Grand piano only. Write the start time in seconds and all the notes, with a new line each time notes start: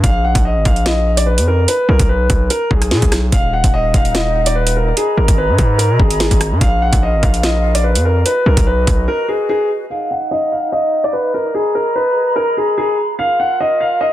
0.04 F5
0.24 F#5
0.45 D#5
0.65 F5
0.86 D#5
1.17 D5
1.26 B4
1.48 A#4
1.68 B4
1.89 A#4
2.09 B4
2.50 A#4
2.71 G#4
2.92 G#4
3.33 F5
3.53 F#5
3.74 D#5
3.95 F5
4.15 D#5
4.46 D5
4.55 B4
4.76 A#4
4.97 G#4
5.17 A#4
5.38 B4
5.78 A#4
6.00 G#4
6.20 G#4
6.61 F5
6.82 F#5
7.03 D#5
7.23 F5
7.43 D#5
7.75 D5
7.84 B4
8.05 A#4
8.26 B4
8.47 A#4
8.67 B4
9.08 A#4
9.28 G#4
9.49 G#4
9.90 F5
10.11 F#5
10.31 D#5
10.52 F5
10.72 D#5
11.04 D5
11.13 B4
11.34 A#4
11.54 G#4
11.75 A#4
11.95 B4
12.36 A#4
12.57 G#4
12.78 G#4
13.19 F5
13.40 F#5
13.60 D#5
13.80 F5
14.01 D#5